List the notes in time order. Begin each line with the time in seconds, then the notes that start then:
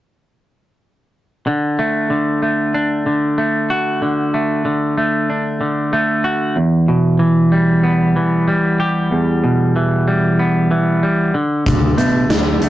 1.47 D3
1.79 A3
2.10 D3
2.42 A3
2.74 D4
3.06 D3
3.38 A3
3.70 F#4
4.02 D3
4.34 A3
4.65 D3
4.98 A3
5.30 D4
5.61 D3
5.93 A3
6.24 F#4
6.56 E2
6.88 B2
7.19 E3
7.52 G3
7.83 B3
8.16 E3
8.48 G3
8.80 G4
9.11 E2
9.44 B2
9.76 E3
10.08 G3
10.39 B3
10.71 E3
11.03 G3
11.34 D3
11.66 D2, kick, closed hi-hat
11.98 B2 A3, closed hi-hat
12.29 D2 D3, snare, closed hi-hat
12.61 D2 A3, closed hi-hat